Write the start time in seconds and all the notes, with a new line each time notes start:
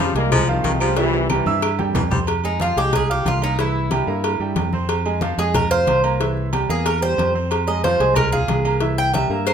Already playing: C#3 F3 F5
0.00 G3, high conga
0.15 C2 G3 G#3 A#3 G#4 G#5, cowbell
0.32 F3 G#3, cowbell, high conga, low conga, low agogo, claves
0.48 C3 D#3 F3 F4 F5, high conga
0.64 C2 D#3, cowbell, high conga, low timbale, low agogo
0.80 C#3 F3 G3 G4 G5, high conga, low agogo, claves
0.97 C3 E3 G3 E4 E5, cowbell, high timbale
1.13 high conga, high timbale
1.30 C3 E3 G3 G4 G5, cowbell, high conga, low agogo, claves
1.46 G2 E3 E4 E5 E6, high conga
1.62 cowbell, low agogo, claves
1.79 G3 G4 G5, high conga, low timbale
1.94 F2 E3, cowbell, low conga, low timbale, low agogo
2.11 G3 C4 C5 C6, low conga, low timbale
2.27 cowbell, high conga, low agogo
2.44 G#3 D#4 G#4 G#5, high conga, low agogo
2.60 F3 F4 F5, cowbell, high conga, low timbale
2.76 C2 G#3 G4 G#4 G#5, cowbell
2.93 G#4, cowbell, high conga, low conga, low agogo
3.09 F4 G4 F5 F6, high conga
3.25 C2 F4, cowbell, high conga, low timbale, low agogo
3.42 A#3 D#4 A#4 A#5, high conga, low agogo
3.59 E3 E4 E5, cowbell
3.75 high conga
3.91 G3 G4 G5, cowbell, high conga, low timbale, low agogo
4.07 G2 A#3 A#4 A#5, high conga
4.24 cowbell, high conga, low agogo
4.40 G2 G3 G4 G5, high conga
4.55 F2, cowbell, high conga, low timbale, low agogo
4.73 C4 C5 C6, high conga
4.89 cowbell, high conga, low agogo
5.05 G#3 G#4 G#5, high conga, low agogo
5.21 F3 F4 F5, cowbell, high conga, low timbale
5.38 F2 G#3 G#4 G#5, cowbell
5.54 A#4, cowbell, high conga, low conga, low agogo
5.71 F4 C5 F5 F6, high conga
5.87 C2, cowbell, high conga, low timbale, low agogo
6.04 A#3 A#4 A#5, high conga, low agogo
6.20 E3 E4 E5, cowbell, high conga
6.37 high conga
6.53 G3 G4 G5, cowbell, high conga, low timbale, low agogo
6.69 E2 A#3 G#4 A#4 A#5, high conga
6.86 A#4, cowbell, low agogo
7.02 G3 G4 C5 G5
7.18 F2, cowbell, high conga, low timbale, low agogo
7.35 C4 C5 C6
7.51 cowbell, high conga, low agogo
7.67 G#3 G#4 D#5 G#5, high conga, low agogo
7.83 F3 F4 C5 F5, cowbell, high conga, low timbale
8.00 C2 G#3 G#4 G#5, cowbell
8.16 A#4, cowbell, high conga, low conga, low agogo
8.32 F4 G#4 F5 F6, high conga, low conga
8.48 C2, cowbell, high conga, low timbale, low agogo
8.65 A#3 A#4 A#5, high conga, low agogo
8.80 E3 E4 E5, cowbell
8.98 G5, high conga
9.14 G3 G4 E5 G5, cowbell, high conga, low timbale, low agogo
9.30 G2 A#3 A#4 A#5
9.47 C5, cowbell, high conga, low agogo